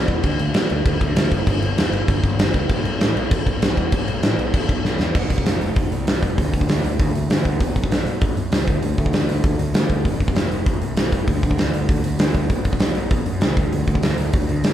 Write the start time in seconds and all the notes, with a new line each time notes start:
0.08 E2, kick, crash
0.23 D2, kick, crash
0.39 D2, crash
0.54 B2, snare, crash
0.70 D2, crash
0.86 D2, kick, crash
1.01 D2, kick, crash
1.15 D2, snare, crash
1.31 F#1, kick, crash
1.47 G1, kick, crash
1.61 G1, crash
1.76 E2, snare, crash
1.91 G1, crash
2.08 G1, kick, crash
2.23 G1, kick, crash
2.37 G1, snare, crash
2.54 C#2, kick, crash
2.69 B1, kick, crash
2.84 B1, crash
3.00 A2, snare, crash
3.16 B1, crash
3.31 B1, kick, crash
3.46 B1, kick, crash
3.62 B1, snare, crash
3.77 E2, kick, crash
3.92 B1, kick, crash
4.08 B1, crash
4.22 A2, snare, crash
4.38 B1, crash
4.54 B1, kick, crash
4.69 B1, kick, crash
4.84 B1, snare
4.99 E2, snare
5.15 F1, kick, crash
5.30 F1, kick, open hi-hat
5.38 kick
5.46 F1, snare, open hi-hat
5.61 F1, open hi-hat
5.76 F1, kick, open hi-hat
5.92 C2, open hi-hat
6.07 C2, snare, open hi-hat
6.22 F1, kick, open hi-hat
6.38 D2, kick, open hi-hat
6.54 D2, kick, open hi-hat
6.61 kick
6.68 D2, snare, open hi-hat
6.83 D2, open hi-hat
6.99 D2, kick, open hi-hat
7.15 D2, open hi-hat
7.30 D2, snare, open hi-hat
7.45 D2, kick, open hi-hat
7.60 B1, kick, open hi-hat
7.76 B1, kick, open hi-hat
7.84 kick
7.91 B1, snare, open hi-hat
8.06 B1, open hi-hat
8.21 B1, kick, open hi-hat
8.36 F#2, open hi-hat
8.52 C#2, snare, open hi-hat
8.67 D2, kick, open hi-hat
8.82 D2, open hi-hat
8.98 D2, kick, open hi-hat
9.06 kick
9.13 D2, snare, open hi-hat
9.29 D2, open hi-hat
9.44 D2, kick, open hi-hat
9.58 D2, open hi-hat
9.74 D2, snare, open hi-hat
9.89 D2, kick, open hi-hat
10.05 F1, kick, open hi-hat
10.20 F1, kick, open hi-hat
10.28 kick
10.35 F1, snare, open hi-hat
10.51 F1, open hi-hat
10.66 F1, kick, open hi-hat
10.81 C2, open hi-hat
10.97 C2, snare, open hi-hat
11.12 F1, kick, open hi-hat
11.28 D2, kick, open hi-hat
11.43 D2, kick, open hi-hat
11.51 kick
11.58 D2, snare, open hi-hat
11.74 D2, open hi-hat
11.89 D2, kick, open hi-hat
12.04 D2, open hi-hat
12.19 D2, snare, open hi-hat
12.34 D2, kick, open hi-hat
12.50 B1, kick, open hi-hat
12.65 B1, kick, open hi-hat
12.73 kick
12.80 B1, snare, open hi-hat
12.95 B1, open hi-hat
13.11 B1, kick, open hi-hat
13.26 F#2, open hi-hat
13.41 C#2, snare, open hi-hat
13.57 D2, kick, open hi-hat
13.72 D2, open hi-hat
13.87 D2, kick, open hi-hat
13.95 kick
14.02 D2, snare, open hi-hat
14.18 D2, open hi-hat
14.33 D2, kick, open hi-hat
14.48 D2, open hi-hat
14.64 D2, snare, open hi-hat